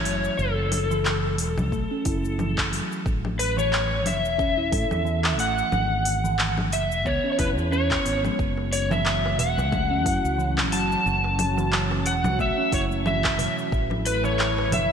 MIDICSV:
0, 0, Header, 1, 7, 480
1, 0, Start_track
1, 0, Key_signature, 3, "minor"
1, 0, Tempo, 666667
1, 279, Time_signature, 4, 2, 24, 8
1, 10742, End_track
2, 0, Start_track
2, 0, Title_t, "Electric slide guitar"
2, 0, Program_c, 0, 29
2, 0, Note_on_c, 0, 73, 98
2, 269, Note_on_c, 0, 69, 83
2, 287, Note_off_c, 0, 73, 0
2, 1925, Note_off_c, 0, 69, 0
2, 2442, Note_on_c, 0, 71, 86
2, 2577, Note_off_c, 0, 71, 0
2, 2580, Note_on_c, 0, 73, 95
2, 2929, Note_on_c, 0, 76, 106
2, 2932, Note_off_c, 0, 73, 0
2, 3885, Note_off_c, 0, 76, 0
2, 3888, Note_on_c, 0, 78, 107
2, 4845, Note_off_c, 0, 78, 0
2, 4847, Note_on_c, 0, 76, 98
2, 5083, Note_on_c, 0, 73, 97
2, 5090, Note_off_c, 0, 76, 0
2, 5260, Note_off_c, 0, 73, 0
2, 5269, Note_on_c, 0, 73, 63
2, 5316, Note_off_c, 0, 73, 0
2, 5324, Note_on_c, 0, 71, 84
2, 5388, Note_off_c, 0, 71, 0
2, 5561, Note_on_c, 0, 73, 80
2, 5908, Note_off_c, 0, 73, 0
2, 6282, Note_on_c, 0, 73, 86
2, 6419, Note_off_c, 0, 73, 0
2, 6419, Note_on_c, 0, 76, 100
2, 6761, Note_off_c, 0, 76, 0
2, 6764, Note_on_c, 0, 78, 107
2, 7724, Note_on_c, 0, 81, 114
2, 7750, Note_off_c, 0, 78, 0
2, 8691, Note_on_c, 0, 78, 97
2, 8710, Note_off_c, 0, 81, 0
2, 8931, Note_off_c, 0, 78, 0
2, 8934, Note_on_c, 0, 76, 100
2, 9150, Note_off_c, 0, 76, 0
2, 9173, Note_on_c, 0, 73, 88
2, 9236, Note_off_c, 0, 73, 0
2, 9411, Note_on_c, 0, 76, 84
2, 9754, Note_off_c, 0, 76, 0
2, 10126, Note_on_c, 0, 71, 106
2, 10257, Note_off_c, 0, 71, 0
2, 10260, Note_on_c, 0, 73, 106
2, 10578, Note_off_c, 0, 73, 0
2, 10609, Note_on_c, 0, 76, 114
2, 10742, Note_off_c, 0, 76, 0
2, 10742, End_track
3, 0, Start_track
3, 0, Title_t, "Analog synth pad"
3, 0, Program_c, 1, 89
3, 6030, Note_on_c, 1, 66, 97
3, 6033, Note_on_c, 1, 61, 77
3, 6034, Note_on_c, 1, 54, 82
3, 9845, Note_off_c, 1, 66, 0
3, 9847, Note_off_c, 1, 54, 0
3, 9847, Note_off_c, 1, 61, 0
3, 9884, Note_on_c, 1, 57, 82
3, 9884, Note_on_c, 1, 64, 82
3, 9884, Note_on_c, 1, 71, 92
3, 10742, Note_off_c, 1, 57, 0
3, 10742, Note_off_c, 1, 64, 0
3, 10742, Note_off_c, 1, 71, 0
3, 10742, End_track
4, 0, Start_track
4, 0, Title_t, "Steel tongue drum"
4, 0, Program_c, 2, 114
4, 40, Note_on_c, 2, 54, 72
4, 116, Note_off_c, 2, 54, 0
4, 653, Note_on_c, 2, 52, 106
4, 750, Note_off_c, 2, 52, 0
4, 759, Note_on_c, 2, 52, 75
4, 836, Note_off_c, 2, 52, 0
4, 1238, Note_on_c, 2, 57, 81
4, 1360, Note_off_c, 2, 57, 0
4, 1376, Note_on_c, 2, 61, 80
4, 1474, Note_off_c, 2, 61, 0
4, 1477, Note_on_c, 2, 64, 76
4, 1707, Note_off_c, 2, 64, 0
4, 1718, Note_on_c, 2, 52, 97
4, 1795, Note_off_c, 2, 52, 0
4, 1957, Note_on_c, 2, 54, 75
4, 2035, Note_off_c, 2, 54, 0
4, 2572, Note_on_c, 2, 52, 104
4, 2670, Note_off_c, 2, 52, 0
4, 2679, Note_on_c, 2, 52, 73
4, 2756, Note_off_c, 2, 52, 0
4, 3156, Note_on_c, 2, 61, 80
4, 3279, Note_off_c, 2, 61, 0
4, 3292, Note_on_c, 2, 64, 79
4, 3392, Note_off_c, 2, 64, 0
4, 3395, Note_on_c, 2, 69, 72
4, 3626, Note_off_c, 2, 69, 0
4, 3633, Note_on_c, 2, 52, 99
4, 3713, Note_off_c, 2, 52, 0
4, 3874, Note_on_c, 2, 57, 77
4, 3953, Note_off_c, 2, 57, 0
4, 4493, Note_on_c, 2, 52, 108
4, 4587, Note_off_c, 2, 52, 0
4, 4596, Note_on_c, 2, 52, 72
4, 4674, Note_off_c, 2, 52, 0
4, 5076, Note_on_c, 2, 59, 79
4, 5199, Note_off_c, 2, 59, 0
4, 5213, Note_on_c, 2, 61, 78
4, 5313, Note_off_c, 2, 61, 0
4, 5318, Note_on_c, 2, 64, 77
4, 5446, Note_off_c, 2, 64, 0
4, 5556, Note_on_c, 2, 61, 97
4, 5679, Note_off_c, 2, 61, 0
4, 5795, Note_on_c, 2, 59, 71
4, 5925, Note_off_c, 2, 59, 0
4, 5930, Note_on_c, 2, 56, 101
4, 6026, Note_off_c, 2, 56, 0
4, 6410, Note_on_c, 2, 52, 109
4, 6505, Note_off_c, 2, 52, 0
4, 6514, Note_on_c, 2, 52, 80
4, 6593, Note_off_c, 2, 52, 0
4, 6994, Note_on_c, 2, 57, 76
4, 7118, Note_off_c, 2, 57, 0
4, 7130, Note_on_c, 2, 61, 82
4, 7231, Note_off_c, 2, 61, 0
4, 7232, Note_on_c, 2, 64, 69
4, 7465, Note_off_c, 2, 64, 0
4, 7474, Note_on_c, 2, 52, 100
4, 7553, Note_off_c, 2, 52, 0
4, 7716, Note_on_c, 2, 54, 75
4, 7794, Note_off_c, 2, 54, 0
4, 8333, Note_on_c, 2, 52, 110
4, 8429, Note_off_c, 2, 52, 0
4, 8438, Note_on_c, 2, 52, 83
4, 8515, Note_off_c, 2, 52, 0
4, 8922, Note_on_c, 2, 57, 81
4, 9042, Note_off_c, 2, 57, 0
4, 9056, Note_on_c, 2, 61, 83
4, 9154, Note_off_c, 2, 61, 0
4, 9160, Note_on_c, 2, 64, 75
4, 9389, Note_off_c, 2, 64, 0
4, 9402, Note_on_c, 2, 52, 98
4, 9477, Note_off_c, 2, 52, 0
4, 9639, Note_on_c, 2, 54, 75
4, 9716, Note_off_c, 2, 54, 0
4, 10253, Note_on_c, 2, 52, 106
4, 10348, Note_off_c, 2, 52, 0
4, 10356, Note_on_c, 2, 52, 78
4, 10434, Note_off_c, 2, 52, 0
4, 10742, End_track
5, 0, Start_track
5, 0, Title_t, "Fretless electric bass"
5, 0, Program_c, 3, 35
5, 37, Note_on_c, 3, 30, 93
5, 199, Note_off_c, 3, 30, 0
5, 278, Note_on_c, 3, 30, 96
5, 998, Note_off_c, 3, 30, 0
5, 998, Note_on_c, 3, 28, 106
5, 1133, Note_on_c, 3, 37, 95
5, 1144, Note_off_c, 3, 28, 0
5, 1239, Note_off_c, 3, 37, 0
5, 1239, Note_on_c, 3, 35, 102
5, 1323, Note_off_c, 3, 35, 0
5, 1481, Note_on_c, 3, 30, 95
5, 2014, Note_off_c, 3, 30, 0
5, 2202, Note_on_c, 3, 33, 92
5, 2921, Note_off_c, 3, 33, 0
5, 2921, Note_on_c, 3, 30, 110
5, 3056, Note_off_c, 3, 30, 0
5, 3056, Note_on_c, 3, 28, 85
5, 3401, Note_on_c, 3, 45, 89
5, 3411, Note_off_c, 3, 28, 0
5, 3484, Note_off_c, 3, 45, 0
5, 3538, Note_on_c, 3, 40, 92
5, 3880, Note_off_c, 3, 40, 0
5, 3880, Note_on_c, 3, 33, 91
5, 4041, Note_off_c, 3, 33, 0
5, 4121, Note_on_c, 3, 32, 98
5, 4840, Note_off_c, 3, 32, 0
5, 4840, Note_on_c, 3, 30, 112
5, 4975, Note_off_c, 3, 30, 0
5, 4975, Note_on_c, 3, 28, 92
5, 5082, Note_off_c, 3, 28, 0
5, 5082, Note_on_c, 3, 37, 92
5, 5165, Note_off_c, 3, 37, 0
5, 5321, Note_on_c, 3, 28, 99
5, 5454, Note_off_c, 3, 28, 0
5, 5454, Note_on_c, 3, 40, 97
5, 5736, Note_off_c, 3, 40, 0
5, 5801, Note_on_c, 3, 32, 83
5, 5961, Note_off_c, 3, 32, 0
5, 6041, Note_on_c, 3, 30, 95
5, 6762, Note_off_c, 3, 30, 0
5, 6762, Note_on_c, 3, 28, 103
5, 6896, Note_on_c, 3, 37, 93
5, 6907, Note_off_c, 3, 28, 0
5, 7241, Note_off_c, 3, 37, 0
5, 7241, Note_on_c, 3, 42, 95
5, 7324, Note_off_c, 3, 42, 0
5, 7375, Note_on_c, 3, 37, 91
5, 7722, Note_off_c, 3, 37, 0
5, 7722, Note_on_c, 3, 30, 90
5, 7881, Note_off_c, 3, 30, 0
5, 7962, Note_on_c, 3, 30, 101
5, 8677, Note_off_c, 3, 30, 0
5, 8677, Note_on_c, 3, 28, 105
5, 8813, Note_on_c, 3, 37, 90
5, 8824, Note_off_c, 3, 28, 0
5, 8921, Note_off_c, 3, 37, 0
5, 8921, Note_on_c, 3, 35, 103
5, 9004, Note_off_c, 3, 35, 0
5, 9162, Note_on_c, 3, 30, 99
5, 9694, Note_off_c, 3, 30, 0
5, 9881, Note_on_c, 3, 33, 95
5, 10599, Note_off_c, 3, 33, 0
5, 10599, Note_on_c, 3, 30, 103
5, 10734, Note_off_c, 3, 30, 0
5, 10742, End_track
6, 0, Start_track
6, 0, Title_t, "Darbuka"
6, 6174, Note_on_c, 9, 62, 55
6, 6246, Note_off_c, 9, 62, 0
6, 6414, Note_on_c, 9, 63, 36
6, 6423, Note_on_c, 9, 62, 63
6, 6486, Note_off_c, 9, 63, 0
6, 6495, Note_off_c, 9, 62, 0
6, 6664, Note_on_c, 9, 63, 62
6, 6736, Note_off_c, 9, 63, 0
6, 6759, Note_on_c, 9, 64, 73
6, 6767, Note_on_c, 9, 62, 52
6, 6831, Note_off_c, 9, 64, 0
6, 6839, Note_off_c, 9, 62, 0
6, 6901, Note_on_c, 9, 63, 58
6, 6973, Note_off_c, 9, 63, 0
6, 7244, Note_on_c, 9, 62, 56
6, 7316, Note_off_c, 9, 62, 0
6, 8094, Note_on_c, 9, 62, 64
6, 8166, Note_off_c, 9, 62, 0
6, 8335, Note_on_c, 9, 62, 63
6, 8407, Note_off_c, 9, 62, 0
6, 8577, Note_on_c, 9, 63, 55
6, 8649, Note_off_c, 9, 63, 0
6, 8683, Note_on_c, 9, 62, 50
6, 8755, Note_off_c, 9, 62, 0
6, 8817, Note_on_c, 9, 63, 58
6, 8889, Note_off_c, 9, 63, 0
6, 9537, Note_on_c, 9, 63, 67
6, 9609, Note_off_c, 9, 63, 0
6, 9638, Note_on_c, 9, 64, 90
6, 9710, Note_off_c, 9, 64, 0
6, 10009, Note_on_c, 9, 62, 60
6, 10081, Note_off_c, 9, 62, 0
6, 10250, Note_on_c, 9, 63, 32
6, 10252, Note_on_c, 9, 62, 68
6, 10322, Note_off_c, 9, 63, 0
6, 10324, Note_off_c, 9, 62, 0
6, 10500, Note_on_c, 9, 63, 68
6, 10572, Note_off_c, 9, 63, 0
6, 10600, Note_on_c, 9, 62, 50
6, 10600, Note_on_c, 9, 64, 76
6, 10672, Note_off_c, 9, 62, 0
6, 10672, Note_off_c, 9, 64, 0
6, 10742, End_track
7, 0, Start_track
7, 0, Title_t, "Drums"
7, 38, Note_on_c, 9, 46, 95
7, 42, Note_on_c, 9, 69, 79
7, 110, Note_off_c, 9, 46, 0
7, 114, Note_off_c, 9, 69, 0
7, 176, Note_on_c, 9, 69, 45
7, 248, Note_off_c, 9, 69, 0
7, 280, Note_on_c, 9, 69, 36
7, 352, Note_off_c, 9, 69, 0
7, 517, Note_on_c, 9, 46, 93
7, 517, Note_on_c, 9, 64, 76
7, 521, Note_on_c, 9, 69, 79
7, 589, Note_off_c, 9, 46, 0
7, 589, Note_off_c, 9, 64, 0
7, 593, Note_off_c, 9, 69, 0
7, 657, Note_on_c, 9, 69, 44
7, 729, Note_off_c, 9, 69, 0
7, 758, Note_on_c, 9, 39, 78
7, 762, Note_on_c, 9, 69, 36
7, 830, Note_off_c, 9, 39, 0
7, 834, Note_off_c, 9, 69, 0
7, 997, Note_on_c, 9, 46, 86
7, 1000, Note_on_c, 9, 69, 77
7, 1069, Note_off_c, 9, 46, 0
7, 1072, Note_off_c, 9, 69, 0
7, 1135, Note_on_c, 9, 64, 75
7, 1139, Note_on_c, 9, 69, 47
7, 1207, Note_off_c, 9, 64, 0
7, 1211, Note_off_c, 9, 69, 0
7, 1240, Note_on_c, 9, 36, 61
7, 1244, Note_on_c, 9, 69, 35
7, 1312, Note_off_c, 9, 36, 0
7, 1316, Note_off_c, 9, 69, 0
7, 1478, Note_on_c, 9, 46, 90
7, 1481, Note_on_c, 9, 36, 100
7, 1482, Note_on_c, 9, 69, 85
7, 1550, Note_off_c, 9, 46, 0
7, 1553, Note_off_c, 9, 36, 0
7, 1554, Note_off_c, 9, 69, 0
7, 1619, Note_on_c, 9, 69, 49
7, 1691, Note_off_c, 9, 69, 0
7, 1721, Note_on_c, 9, 64, 80
7, 1725, Note_on_c, 9, 69, 35
7, 1793, Note_off_c, 9, 64, 0
7, 1797, Note_off_c, 9, 69, 0
7, 1856, Note_on_c, 9, 36, 111
7, 1858, Note_on_c, 9, 39, 77
7, 1928, Note_off_c, 9, 36, 0
7, 1930, Note_off_c, 9, 39, 0
7, 1965, Note_on_c, 9, 46, 86
7, 1968, Note_on_c, 9, 69, 78
7, 2037, Note_off_c, 9, 46, 0
7, 2040, Note_off_c, 9, 69, 0
7, 2104, Note_on_c, 9, 69, 46
7, 2176, Note_off_c, 9, 69, 0
7, 2202, Note_on_c, 9, 36, 122
7, 2207, Note_on_c, 9, 69, 37
7, 2274, Note_off_c, 9, 36, 0
7, 2279, Note_off_c, 9, 69, 0
7, 2339, Note_on_c, 9, 64, 81
7, 2411, Note_off_c, 9, 64, 0
7, 2444, Note_on_c, 9, 46, 85
7, 2448, Note_on_c, 9, 69, 84
7, 2516, Note_off_c, 9, 46, 0
7, 2520, Note_off_c, 9, 69, 0
7, 2583, Note_on_c, 9, 69, 48
7, 2655, Note_off_c, 9, 69, 0
7, 2685, Note_on_c, 9, 39, 80
7, 2688, Note_on_c, 9, 69, 37
7, 2757, Note_off_c, 9, 39, 0
7, 2760, Note_off_c, 9, 69, 0
7, 2922, Note_on_c, 9, 46, 83
7, 2922, Note_on_c, 9, 64, 73
7, 2926, Note_on_c, 9, 69, 79
7, 2994, Note_off_c, 9, 46, 0
7, 2994, Note_off_c, 9, 64, 0
7, 2998, Note_off_c, 9, 69, 0
7, 3061, Note_on_c, 9, 69, 45
7, 3133, Note_off_c, 9, 69, 0
7, 3162, Note_on_c, 9, 36, 109
7, 3166, Note_on_c, 9, 69, 35
7, 3234, Note_off_c, 9, 36, 0
7, 3238, Note_off_c, 9, 69, 0
7, 3402, Note_on_c, 9, 36, 101
7, 3402, Note_on_c, 9, 46, 89
7, 3406, Note_on_c, 9, 69, 78
7, 3474, Note_off_c, 9, 36, 0
7, 3474, Note_off_c, 9, 46, 0
7, 3478, Note_off_c, 9, 69, 0
7, 3536, Note_on_c, 9, 64, 80
7, 3540, Note_on_c, 9, 69, 49
7, 3608, Note_off_c, 9, 64, 0
7, 3612, Note_off_c, 9, 69, 0
7, 3646, Note_on_c, 9, 69, 35
7, 3718, Note_off_c, 9, 69, 0
7, 3775, Note_on_c, 9, 39, 79
7, 3847, Note_off_c, 9, 39, 0
7, 3880, Note_on_c, 9, 46, 83
7, 3884, Note_on_c, 9, 69, 79
7, 3952, Note_off_c, 9, 46, 0
7, 3956, Note_off_c, 9, 69, 0
7, 4020, Note_on_c, 9, 69, 50
7, 4092, Note_off_c, 9, 69, 0
7, 4120, Note_on_c, 9, 64, 84
7, 4124, Note_on_c, 9, 69, 35
7, 4192, Note_off_c, 9, 64, 0
7, 4196, Note_off_c, 9, 69, 0
7, 4359, Note_on_c, 9, 46, 89
7, 4363, Note_on_c, 9, 69, 80
7, 4431, Note_off_c, 9, 46, 0
7, 4435, Note_off_c, 9, 69, 0
7, 4499, Note_on_c, 9, 69, 45
7, 4571, Note_off_c, 9, 69, 0
7, 4599, Note_on_c, 9, 39, 74
7, 4603, Note_on_c, 9, 69, 32
7, 4671, Note_off_c, 9, 39, 0
7, 4675, Note_off_c, 9, 69, 0
7, 4735, Note_on_c, 9, 64, 73
7, 4807, Note_off_c, 9, 64, 0
7, 4842, Note_on_c, 9, 46, 82
7, 4846, Note_on_c, 9, 69, 79
7, 4914, Note_off_c, 9, 46, 0
7, 4918, Note_off_c, 9, 69, 0
7, 4981, Note_on_c, 9, 69, 47
7, 5053, Note_off_c, 9, 69, 0
7, 5082, Note_on_c, 9, 36, 64
7, 5085, Note_on_c, 9, 69, 33
7, 5154, Note_off_c, 9, 36, 0
7, 5157, Note_off_c, 9, 69, 0
7, 5319, Note_on_c, 9, 46, 87
7, 5319, Note_on_c, 9, 64, 78
7, 5322, Note_on_c, 9, 36, 109
7, 5323, Note_on_c, 9, 69, 79
7, 5391, Note_off_c, 9, 46, 0
7, 5391, Note_off_c, 9, 64, 0
7, 5394, Note_off_c, 9, 36, 0
7, 5395, Note_off_c, 9, 69, 0
7, 5459, Note_on_c, 9, 69, 46
7, 5531, Note_off_c, 9, 69, 0
7, 5564, Note_on_c, 9, 69, 36
7, 5636, Note_off_c, 9, 69, 0
7, 5694, Note_on_c, 9, 39, 77
7, 5697, Note_on_c, 9, 36, 103
7, 5766, Note_off_c, 9, 39, 0
7, 5769, Note_off_c, 9, 36, 0
7, 5800, Note_on_c, 9, 46, 83
7, 5804, Note_on_c, 9, 69, 89
7, 5872, Note_off_c, 9, 46, 0
7, 5876, Note_off_c, 9, 69, 0
7, 5937, Note_on_c, 9, 64, 72
7, 5941, Note_on_c, 9, 69, 45
7, 6009, Note_off_c, 9, 64, 0
7, 6013, Note_off_c, 9, 69, 0
7, 6042, Note_on_c, 9, 36, 115
7, 6044, Note_on_c, 9, 69, 35
7, 6114, Note_off_c, 9, 36, 0
7, 6116, Note_off_c, 9, 69, 0
7, 6283, Note_on_c, 9, 46, 85
7, 6286, Note_on_c, 9, 69, 79
7, 6355, Note_off_c, 9, 46, 0
7, 6358, Note_off_c, 9, 69, 0
7, 6418, Note_on_c, 9, 64, 76
7, 6422, Note_on_c, 9, 69, 41
7, 6490, Note_off_c, 9, 64, 0
7, 6494, Note_off_c, 9, 69, 0
7, 6521, Note_on_c, 9, 39, 68
7, 6524, Note_on_c, 9, 69, 35
7, 6593, Note_off_c, 9, 39, 0
7, 6596, Note_off_c, 9, 69, 0
7, 6762, Note_on_c, 9, 46, 84
7, 6765, Note_on_c, 9, 69, 81
7, 6834, Note_off_c, 9, 46, 0
7, 6837, Note_off_c, 9, 69, 0
7, 6902, Note_on_c, 9, 69, 42
7, 6974, Note_off_c, 9, 69, 0
7, 7001, Note_on_c, 9, 64, 75
7, 7002, Note_on_c, 9, 36, 104
7, 7005, Note_on_c, 9, 69, 33
7, 7073, Note_off_c, 9, 64, 0
7, 7074, Note_off_c, 9, 36, 0
7, 7077, Note_off_c, 9, 69, 0
7, 7242, Note_on_c, 9, 36, 101
7, 7243, Note_on_c, 9, 46, 93
7, 7247, Note_on_c, 9, 69, 86
7, 7314, Note_off_c, 9, 36, 0
7, 7315, Note_off_c, 9, 46, 0
7, 7319, Note_off_c, 9, 69, 0
7, 7381, Note_on_c, 9, 69, 47
7, 7453, Note_off_c, 9, 69, 0
7, 7484, Note_on_c, 9, 69, 35
7, 7556, Note_off_c, 9, 69, 0
7, 7617, Note_on_c, 9, 39, 80
7, 7617, Note_on_c, 9, 64, 80
7, 7689, Note_off_c, 9, 39, 0
7, 7689, Note_off_c, 9, 64, 0
7, 7721, Note_on_c, 9, 46, 89
7, 7724, Note_on_c, 9, 69, 82
7, 7793, Note_off_c, 9, 46, 0
7, 7796, Note_off_c, 9, 69, 0
7, 7862, Note_on_c, 9, 69, 43
7, 7934, Note_off_c, 9, 69, 0
7, 7968, Note_on_c, 9, 69, 33
7, 8040, Note_off_c, 9, 69, 0
7, 8200, Note_on_c, 9, 46, 89
7, 8200, Note_on_c, 9, 64, 85
7, 8204, Note_on_c, 9, 69, 77
7, 8272, Note_off_c, 9, 46, 0
7, 8272, Note_off_c, 9, 64, 0
7, 8276, Note_off_c, 9, 69, 0
7, 8340, Note_on_c, 9, 69, 42
7, 8412, Note_off_c, 9, 69, 0
7, 8442, Note_on_c, 9, 39, 72
7, 8446, Note_on_c, 9, 69, 33
7, 8514, Note_off_c, 9, 39, 0
7, 8518, Note_off_c, 9, 69, 0
7, 8681, Note_on_c, 9, 46, 82
7, 8685, Note_on_c, 9, 69, 75
7, 8753, Note_off_c, 9, 46, 0
7, 8757, Note_off_c, 9, 69, 0
7, 8815, Note_on_c, 9, 64, 84
7, 8819, Note_on_c, 9, 69, 43
7, 8887, Note_off_c, 9, 64, 0
7, 8891, Note_off_c, 9, 69, 0
7, 8922, Note_on_c, 9, 36, 60
7, 8925, Note_on_c, 9, 69, 32
7, 8994, Note_off_c, 9, 36, 0
7, 8997, Note_off_c, 9, 69, 0
7, 9161, Note_on_c, 9, 36, 100
7, 9161, Note_on_c, 9, 46, 85
7, 9165, Note_on_c, 9, 69, 78
7, 9233, Note_off_c, 9, 36, 0
7, 9233, Note_off_c, 9, 46, 0
7, 9237, Note_off_c, 9, 69, 0
7, 9299, Note_on_c, 9, 69, 45
7, 9371, Note_off_c, 9, 69, 0
7, 9402, Note_on_c, 9, 64, 88
7, 9406, Note_on_c, 9, 69, 34
7, 9474, Note_off_c, 9, 64, 0
7, 9478, Note_off_c, 9, 69, 0
7, 9535, Note_on_c, 9, 39, 76
7, 9536, Note_on_c, 9, 36, 108
7, 9607, Note_off_c, 9, 39, 0
7, 9608, Note_off_c, 9, 36, 0
7, 9641, Note_on_c, 9, 46, 94
7, 9645, Note_on_c, 9, 69, 79
7, 9713, Note_off_c, 9, 46, 0
7, 9717, Note_off_c, 9, 69, 0
7, 9780, Note_on_c, 9, 69, 42
7, 9852, Note_off_c, 9, 69, 0
7, 9881, Note_on_c, 9, 36, 119
7, 9886, Note_on_c, 9, 69, 31
7, 9953, Note_off_c, 9, 36, 0
7, 9958, Note_off_c, 9, 69, 0
7, 10015, Note_on_c, 9, 64, 84
7, 10087, Note_off_c, 9, 64, 0
7, 10120, Note_on_c, 9, 46, 90
7, 10124, Note_on_c, 9, 69, 77
7, 10192, Note_off_c, 9, 46, 0
7, 10196, Note_off_c, 9, 69, 0
7, 10259, Note_on_c, 9, 69, 43
7, 10331, Note_off_c, 9, 69, 0
7, 10361, Note_on_c, 9, 39, 78
7, 10365, Note_on_c, 9, 69, 32
7, 10433, Note_off_c, 9, 39, 0
7, 10437, Note_off_c, 9, 69, 0
7, 10601, Note_on_c, 9, 46, 93
7, 10601, Note_on_c, 9, 64, 78
7, 10605, Note_on_c, 9, 69, 72
7, 10673, Note_off_c, 9, 46, 0
7, 10673, Note_off_c, 9, 64, 0
7, 10677, Note_off_c, 9, 69, 0
7, 10742, End_track
0, 0, End_of_file